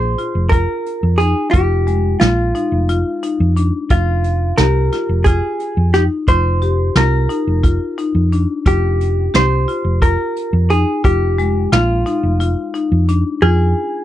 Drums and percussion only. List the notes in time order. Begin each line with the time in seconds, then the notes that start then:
0.18 closed hi-hat
0.52 kick, closed hi-hat
0.86 closed hi-hat
1.20 closed hi-hat
1.54 kick, closed hi-hat
1.87 closed hi-hat
2.21 snare, closed hi-hat
2.55 closed hi-hat
2.89 closed hi-hat
3.23 closed hi-hat
3.57 closed hi-hat
3.90 kick, closed hi-hat
4.24 closed hi-hat
4.58 snare, closed hi-hat
4.92 snare, closed hi-hat
5.25 kick, closed hi-hat
5.60 closed hi-hat
5.93 snare, closed hi-hat
6.28 kick, closed hi-hat
6.62 closed hi-hat
6.95 snare, closed hi-hat
7.30 closed hi-hat
7.64 kick, closed hi-hat
7.98 closed hi-hat
8.32 closed hi-hat
8.66 kick, closed hi-hat
9.01 closed hi-hat
9.34 snare, closed hi-hat
9.69 closed hi-hat
10.02 kick, closed hi-hat
10.36 closed hi-hat
10.71 closed hi-hat
11.04 kick, closed hi-hat
11.39 closed hi-hat
11.72 snare, closed hi-hat
12.06 closed hi-hat
12.40 closed hi-hat
12.75 closed hi-hat
13.08 closed hi-hat